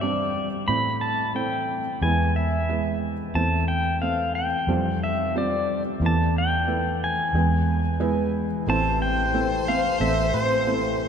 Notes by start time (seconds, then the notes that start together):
Already playing: G1 G2 G3 C4 D4 C5
0.01 G3 C4 D4 C5 D5
0.68 A1 A2 A3 C4 E4 C5 B5
1.01 A5
1.35 A3 C4 E4 C5 G5
2.01 E2 E3 G#3 B3 E4 B4 G#5
2.36 E5
2.69 G#3 B3 E4 B4
3.35 E2 E3 A3 C4 E4 C5 A5
3.68 G5
4.02 A3 C4 C5 F5
4.35 G5
4.67 F1 F2 G3 C4 F4 C5
5.04 E5
5.35 G3 C4 F4 C5 D5
6.00 E2 E3 A3 B3 E4 B4
6.06 A5
6.38 G5
6.67 A3 B3 E4 B4
7.04 G#5
7.33 E2 E3 G#3 B3 E4 B4
8.00 G#3 B3 E4 B4
8.66 A1 A2 C3 E3 A3 C4 E4 C5 A5
9.02 G5
9.34 A3 C4 E4 C5
9.68 A3 C4 E4 C5 F5
10.00 A1 A3 C4 E4 A4 E5
10.34 A2 C5
10.67 A3 C4 E4 C5